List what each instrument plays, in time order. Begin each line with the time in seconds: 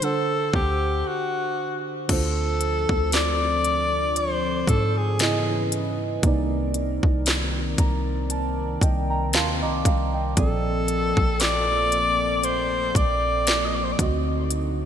0.01 synth keys D3 D4 F#5, alto saxophone A4, closed hi-hat
0.06 synth keys C5
0.53 808-style bass D2, alto saxophone G4, kick
1.07 alto saxophone F#4
2.08 808-style bass D2, synth keys D3 D4 F4, analog synth pad F3 C4 D4 A4, alto saxophone A4, kick, closed hi-hat, crash
2.13 synth keys C5
2.61 closed hi-hat
2.89 808-style bass D2, kick
3.12 alto saxophone D5, snare, closed hi-hat
3.64 closed hi-hat
4.16 alto saxophone C5, closed hi-hat
4.67 808-style bass G#2, alto saxophone A4, kick, closed hi-hat
4.97 alto saxophone G#4
5.19 synth keys C#3 B3 E4 D#5, analog synth pad E3 C#4 B4 D#5, snare, closed hi-hat
5.72 closed hi-hat
6.22 808-style bass C2, synth keys C3 A#3 D#4, analog synth pad D#3 C4 A#4 D5, kick, closed hi-hat
6.27 synth keys D5
6.74 closed hi-hat
7.03 808-style bass C2, kick
7.26 snare, closed hi-hat
7.78 808-style bass C2, synth keys A#5, kick, closed hi-hat
8.30 synth keys A5, closed hi-hat
8.81 808-style bass C2, synth keys D#5 G5, kick, closed hi-hat
9.10 synth keys G5 A#5
9.33 808-style bass D#2, synth keys F5 A5 C6, snare, closed hi-hat
9.62 808-style bass C2, synth keys D#5 A#5 D6
9.85 808-style bass C2, synth keys F5 G5 A#5, kick, closed hi-hat
10.14 synth keys D#5 G5
10.35 808-style bass A#1, synth keys A2 F3 C4 A4, analog synth pad F3 A#3 A4, alto saxophone A4, kick, closed hi-hat
10.40 synth keys A#2 D5
10.88 closed hi-hat
11.17 808-style bass A#1, kick
11.40 alto saxophone D5, snare, closed hi-hat
11.92 closed hi-hat
12.43 alto saxophone C5, closed hi-hat
12.95 808-style bass A#1, alto saxophone D5, kick, closed hi-hat
13.47 snare, closed hi-hat
13.65 alto saxophone D#5
13.75 alto saxophone D5
13.84 alto saxophone C5
13.92 alto saxophone D5
13.98 808-style bass D2, synth keys D3 C4 F#4, analog synth pad D3 C4 D#4 F#4, kick, closed hi-hat
14.02 synth keys D#5
14.50 closed hi-hat